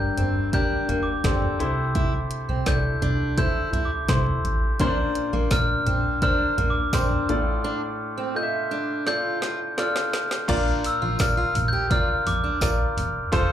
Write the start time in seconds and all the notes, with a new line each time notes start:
Already playing: G1 G2 D4 G4 A#4 G6
0.17 G1 C4, closed hi-hat, floor tom
0.53 D4 G4 A#4 G6, kick, closed hi-hat
0.89 G1 A#3, closed hi-hat, floor tom
1.03 D6
1.24 G1 C4 D4 G4 A4 C6, kick, snare, closed hi-hat
1.42 floor tom
1.59 C2 C3 E4 A4 C5, closed hi-hat
1.95 E4, kick, closed hi-hat
2.31 closed hi-hat
2.49 C2 C4
2.66 C2 E4 A4 D5 G6, kick, snare, closed hi-hat
3.02 C2 D4, closed hi-hat, floor tom
3.37 E4 A4 C5 G6, kick, closed hi-hat
3.73 C2 E4, closed hi-hat, floor tom
3.85 D6
4.08 C2 E4 A4 C5 C6, kick, snare, closed hi-hat
4.26 floor tom
4.44 A1, closed hi-hat
4.79 A#1 A#2 C#4 D4 A#4 C5, kick, closed hi-hat
4.86 D4
5.15 closed hi-hat
5.33 A#1 A#3
5.50 A#1 D4 A#4 D5 F6, kick, snare, closed hi-hat, tambourine
5.86 A#1 C4, closed hi-hat, floor tom
6.22 D4 A#4 C5 F6, kick, closed hi-hat
6.58 A#1 A#3, closed hi-hat, floor tom
6.70 D6
6.93 A#1 C4 D4 A#4 C5 C6, kick, snare, closed hi-hat, tambourine
7.11 floor tom
7.29 A1 A2 F4 A4 D5, closed hi-hat
7.64 D4
8.18 C4
8.35 F4 A4 D#5 G6
8.43 E5
8.71 D4
9.06 F4 A4 D5 G6, snare
9.42 F4, snare
9.77 F4 A4 D5 F6, snare
9.96 snare
10.13 snare
10.31 snare
10.48 A#1 A#2 D4 F4 A#4 D5, kick, open hi-hat, crash
10.84 E6, open hi-hat
11.02 A#1 F4
11.19 A#1 F4 A#4 D5 F6, kick, snare, open hi-hat, tambourine
11.37 F4
11.55 A#1, floor tom, open hi-hat
11.68 G6
11.73 G4
11.90 F4 A#4 D5 F6, kick, open hi-hat
12.26 A#1 D6, floor tom, open hi-hat
12.44 D4
12.61 A#1 F4 A#4 D5, kick, snare, open hi-hat, tambourine
12.97 E1, floor tom, open hi-hat
13.32 F1 F4 A4 C5, kick, open hi-hat